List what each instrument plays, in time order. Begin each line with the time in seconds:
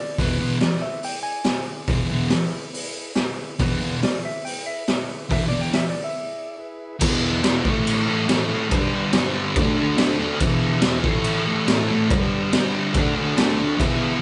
Already playing: transistor combo organ E4 G#4 B4, electric slide guitar D5
0.18 distorted electric guitar E2 B2 E3, transistor combo organ E4 G#4 B4, electric slide guitar B4, kick, open hi-hat
0.39 distorted electric guitar E2 B2 E3
0.61 transistor combo organ E4 G#4 B4, electric slide guitar D5, snare, open hi-hat
0.72 snare
0.82 electric slide guitar E5
1.02 transistor combo organ E4 G#4 D5, electric slide guitar G5, open hi-hat
1.23 electric slide guitar G#5
1.44 transistor combo organ E4 G#4 D5, snare, open hi-hat
1.87 distorted electric guitar E2 B2 E3, transistor combo organ E4 G#4 B4, kick, open hi-hat
2.10 distorted electric guitar E2 B2 E3
2.28 transistor combo organ E4 G#4 B4, snare, open hi-hat
2.73 transistor combo organ E4 G#4 B4, open hi-hat
3.15 transistor combo organ E4 G#4 B4, snare, open hi-hat
3.59 distorted electric guitar E2 B2 E3, transistor combo organ E4 G#4 B4, electric slide guitar B4, kick, open hi-hat
3.80 distorted electric guitar E2 B2 E3
4.03 transistor combo organ E4 G#4 B4, electric slide guitar D5, snare, open hi-hat
4.25 electric slide guitar E5
4.45 transistor combo organ E4 G#4 B4, electric slide guitar G5, open hi-hat
4.66 electric slide guitar E5
4.88 transistor combo organ E4 G#4 B4, snare, open hi-hat
5.29 distorted electric guitar E2 B2 E3, transistor combo organ E4, electric slide guitar E5, kick, open hi-hat
5.33 transistor combo organ G#4 B4
5.48 distorted electric guitar E2 B2, electric slide guitar D5
5.53 distorted electric guitar E3
5.61 electric slide guitar G5
5.73 transistor combo organ E4 G#4 B4, electric slide guitar E5, snare, open hi-hat
5.89 electric slide guitar D5
6.04 electric slide guitar E5
6.20 transistor combo organ E4 G#4 D5
6.58 transistor combo organ E4 G#4 B4
6.99 distorted electric guitar E2 B2, transistor combo organ G#4 B4, kick, crash
7.04 distorted electric guitar E3, transistor combo organ E4
7.43 distorted electric guitar E2 B2, transistor combo organ E4, snare, crash
7.47 distorted electric guitar E3, transistor combo organ G#4 B4
7.64 distorted electric guitar E3 A3, transistor combo organ E4 A4 C#5, kick
7.69 distorted electric guitar A2
7.87 crash
8.06 distorted electric guitar A3, transistor combo organ E4 A4 C#5
8.11 distorted electric guitar E3
8.27 distorted electric guitar A2 E3, snare, crash
8.31 distorted electric guitar A3, transistor combo organ E4 A4 C#5
8.49 distorted electric guitar A3
8.54 distorted electric guitar E3
8.69 distorted electric guitar G2 D3, kick, crash
8.73 distorted electric guitar G3, transistor combo organ G4 B4 D5
9.13 distorted electric guitar G2 D3, transistor combo organ G4 C#5, snare, crash
9.17 distorted electric guitar G3, transistor combo organ B4
9.56 distorted electric guitar D3 A3, transistor combo organ F#4 A4 D5, kick, crash
9.62 distorted electric guitar D4
9.78 distorted electric guitar A3 D4, transistor combo organ F#4 A4 D5
9.97 distorted electric guitar D3 A3, snare, crash
10.02 distorted electric guitar D4, transistor combo organ F#4 A4 D5
10.19 distorted electric guitar D4
10.24 distorted electric guitar A3
10.40 distorted electric guitar E2 B2, kick, crash
10.45 distorted electric guitar E3, transistor combo organ G#4 B4 E5
10.82 distorted electric guitar E2, snare, crash
10.86 distorted electric guitar B2 E3, transistor combo organ G#4 B4 E5
11.04 distorted electric guitar E3 A3, transistor combo organ E5, kick
11.08 distorted electric guitar A2, transistor combo organ A4 C#5
11.24 crash
11.46 distorted electric guitar A3, transistor combo organ A4 C#5 E5
11.51 distorted electric guitar E3
11.66 distorted electric guitar A2 E3, transistor combo organ A4 C#5 E5, snare, crash
11.71 distorted electric guitar A3
11.89 distorted electric guitar A3
11.94 distorted electric guitar E3
12.10 distorted electric guitar G2 D3, transistor combo organ G4 B4 D5, kick, crash
12.14 distorted electric guitar G3
12.52 distorted electric guitar G2 D3, transistor combo organ G4 B4 D5, snare, crash
12.57 distorted electric guitar G3
12.76 transistor combo organ E5
12.94 distorted electric guitar D3 A3, transistor combo organ F#4 A4 D5 F#5, kick, crash
12.98 distorted electric guitar D4
13.16 distorted electric guitar D4, transistor combo organ F#4 A4 C#5 G#5
13.20 distorted electric guitar A3
13.35 distorted electric guitar D3 A3, transistor combo organ F#4 A4 D5 A5, snare, crash
13.41 distorted electric guitar D4
13.58 distorted electric guitar D4, transistor combo organ C#6
13.63 distorted electric guitar A3
13.74 distorted electric guitar E2, transistor combo organ G#4 B4 E5
13.80 distorted electric guitar B2 E3, kick, crash